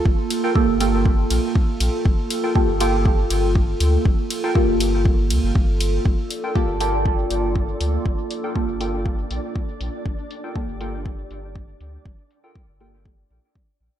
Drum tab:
RD |-x-x-x-x|-x-x-x-x|-x-x-x-x|--------|
HH |-o-o-o-o|-o-o-o-o|-o-o-o-o|-o-o-o-o|
BD |o-o-o-o-|o-o-o-o-|o-o-o-o-|o-o-o-o-|

RD |--------|--------|--------|
HH |-o-o-o-o|-o-o-o-o|-o-o-o--|
BD |o-o-o-o-|o-o-o-o-|o-o-o-o-|